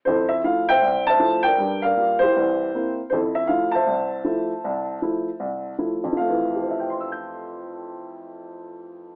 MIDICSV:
0, 0, Header, 1, 2, 480
1, 0, Start_track
1, 0, Key_signature, -1, "major"
1, 0, Tempo, 381437
1, 72, Time_signature, 4, 2, 24, 8
1, 11521, End_track
2, 0, Start_track
2, 0, Title_t, "Upright piano"
2, 0, Program_c, 0, 0
2, 64, Note_on_c, 0, 72, 77
2, 92, Note_on_c, 0, 41, 66
2, 96, Note_on_c, 0, 64, 54
2, 99, Note_on_c, 0, 69, 54
2, 352, Note_off_c, 0, 72, 0
2, 359, Note_on_c, 0, 76, 74
2, 496, Note_off_c, 0, 41, 0
2, 528, Note_off_c, 0, 76, 0
2, 542, Note_off_c, 0, 64, 0
2, 555, Note_on_c, 0, 53, 47
2, 558, Note_on_c, 0, 77, 80
2, 561, Note_on_c, 0, 64, 51
2, 562, Note_on_c, 0, 57, 48
2, 839, Note_off_c, 0, 77, 0
2, 865, Note_on_c, 0, 79, 102
2, 876, Note_off_c, 0, 53, 0
2, 876, Note_on_c, 0, 76, 61
2, 879, Note_off_c, 0, 64, 0
2, 880, Note_off_c, 0, 57, 0
2, 885, Note_on_c, 0, 72, 71
2, 993, Note_off_c, 0, 69, 0
2, 1036, Note_on_c, 0, 36, 61
2, 1306, Note_off_c, 0, 79, 0
2, 1345, Note_on_c, 0, 81, 107
2, 1351, Note_off_c, 0, 72, 0
2, 1360, Note_off_c, 0, 76, 0
2, 1369, Note_on_c, 0, 72, 65
2, 1379, Note_on_c, 0, 76, 63
2, 1446, Note_off_c, 0, 36, 0
2, 1506, Note_on_c, 0, 53, 52
2, 1515, Note_on_c, 0, 57, 44
2, 1523, Note_on_c, 0, 64, 49
2, 1798, Note_on_c, 0, 79, 102
2, 1831, Note_off_c, 0, 53, 0
2, 1834, Note_off_c, 0, 81, 0
2, 1835, Note_off_c, 0, 57, 0
2, 1835, Note_on_c, 0, 70, 61
2, 1836, Note_on_c, 0, 74, 59
2, 1839, Note_off_c, 0, 64, 0
2, 1960, Note_off_c, 0, 72, 0
2, 1965, Note_off_c, 0, 76, 0
2, 1989, Note_on_c, 0, 55, 61
2, 1993, Note_on_c, 0, 43, 65
2, 2293, Note_on_c, 0, 77, 88
2, 2297, Note_off_c, 0, 74, 0
2, 2300, Note_off_c, 0, 79, 0
2, 2304, Note_off_c, 0, 70, 0
2, 2316, Note_on_c, 0, 74, 56
2, 2323, Note_on_c, 0, 70, 55
2, 2402, Note_off_c, 0, 55, 0
2, 2404, Note_off_c, 0, 43, 0
2, 2477, Note_on_c, 0, 58, 42
2, 2481, Note_on_c, 0, 55, 50
2, 2486, Note_on_c, 0, 65, 58
2, 2739, Note_off_c, 0, 77, 0
2, 2756, Note_on_c, 0, 72, 96
2, 2796, Note_off_c, 0, 58, 0
2, 2798, Note_off_c, 0, 55, 0
2, 2800, Note_off_c, 0, 65, 0
2, 2801, Note_on_c, 0, 64, 58
2, 2804, Note_on_c, 0, 67, 64
2, 2912, Note_off_c, 0, 74, 0
2, 2916, Note_off_c, 0, 70, 0
2, 2970, Note_on_c, 0, 36, 63
2, 2970, Note_on_c, 0, 52, 59
2, 3373, Note_off_c, 0, 36, 0
2, 3373, Note_off_c, 0, 52, 0
2, 3446, Note_off_c, 0, 64, 0
2, 3454, Note_on_c, 0, 58, 45
2, 3456, Note_on_c, 0, 60, 46
2, 3465, Note_on_c, 0, 64, 55
2, 3673, Note_off_c, 0, 72, 0
2, 3697, Note_off_c, 0, 67, 0
2, 3764, Note_off_c, 0, 58, 0
2, 3765, Note_off_c, 0, 60, 0
2, 3769, Note_off_c, 0, 64, 0
2, 3897, Note_on_c, 0, 72, 71
2, 3931, Note_on_c, 0, 41, 60
2, 3936, Note_on_c, 0, 69, 55
2, 3941, Note_on_c, 0, 64, 52
2, 3966, Note_off_c, 0, 72, 0
2, 4212, Note_on_c, 0, 76, 75
2, 4334, Note_off_c, 0, 41, 0
2, 4368, Note_on_c, 0, 77, 79
2, 4378, Note_off_c, 0, 64, 0
2, 4388, Note_on_c, 0, 57, 46
2, 4390, Note_on_c, 0, 53, 49
2, 4391, Note_off_c, 0, 76, 0
2, 4397, Note_on_c, 0, 64, 56
2, 4662, Note_off_c, 0, 77, 0
2, 4674, Note_on_c, 0, 81, 82
2, 4711, Note_off_c, 0, 57, 0
2, 4712, Note_off_c, 0, 53, 0
2, 4712, Note_on_c, 0, 72, 60
2, 4715, Note_off_c, 0, 64, 0
2, 4725, Note_on_c, 0, 76, 61
2, 4830, Note_off_c, 0, 69, 0
2, 4866, Note_on_c, 0, 36, 64
2, 5280, Note_off_c, 0, 36, 0
2, 5343, Note_on_c, 0, 53, 49
2, 5347, Note_on_c, 0, 57, 43
2, 5355, Note_on_c, 0, 64, 51
2, 5669, Note_off_c, 0, 53, 0
2, 5671, Note_off_c, 0, 57, 0
2, 5675, Note_off_c, 0, 64, 0
2, 5846, Note_on_c, 0, 36, 68
2, 6251, Note_off_c, 0, 36, 0
2, 6318, Note_on_c, 0, 53, 49
2, 6328, Note_on_c, 0, 64, 54
2, 6330, Note_on_c, 0, 57, 46
2, 6637, Note_off_c, 0, 53, 0
2, 6642, Note_off_c, 0, 64, 0
2, 6643, Note_off_c, 0, 57, 0
2, 6794, Note_on_c, 0, 36, 64
2, 7205, Note_off_c, 0, 36, 0
2, 7208, Note_off_c, 0, 81, 0
2, 7227, Note_off_c, 0, 72, 0
2, 7234, Note_off_c, 0, 76, 0
2, 7280, Note_on_c, 0, 53, 46
2, 7280, Note_on_c, 0, 57, 39
2, 7283, Note_on_c, 0, 64, 55
2, 7598, Note_off_c, 0, 53, 0
2, 7598, Note_off_c, 0, 57, 0
2, 7600, Note_off_c, 0, 64, 0
2, 7601, Note_on_c, 0, 41, 57
2, 7710, Note_on_c, 0, 53, 57
2, 7766, Note_on_c, 0, 77, 70
2, 7812, Note_on_c, 0, 57, 55
2, 7919, Note_on_c, 0, 52, 63
2, 8245, Note_on_c, 0, 67, 40
2, 8340, Note_on_c, 0, 72, 36
2, 8444, Note_on_c, 0, 76, 40
2, 8555, Note_on_c, 0, 79, 36
2, 8683, Note_on_c, 0, 84, 36
2, 8816, Note_on_c, 0, 88, 32
2, 8961, Note_on_c, 0, 91, 32
2, 11513, Note_off_c, 0, 41, 0
2, 11521, Note_off_c, 0, 52, 0
2, 11521, Note_off_c, 0, 53, 0
2, 11521, Note_off_c, 0, 57, 0
2, 11521, Note_off_c, 0, 67, 0
2, 11521, Note_off_c, 0, 72, 0
2, 11521, Note_off_c, 0, 76, 0
2, 11521, Note_off_c, 0, 77, 0
2, 11521, Note_off_c, 0, 79, 0
2, 11521, Note_off_c, 0, 84, 0
2, 11521, Note_off_c, 0, 88, 0
2, 11521, Note_off_c, 0, 91, 0
2, 11521, End_track
0, 0, End_of_file